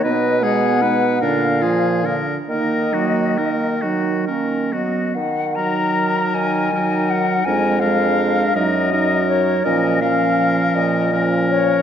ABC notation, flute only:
X:1
M:6/8
L:1/8
Q:3/8=52
K:Ebm
V:1 name="Flute"
e g2 f2 z | e3 z2 e | g b2 a2 g | a f2 e2 d |
e f2 e2 d |]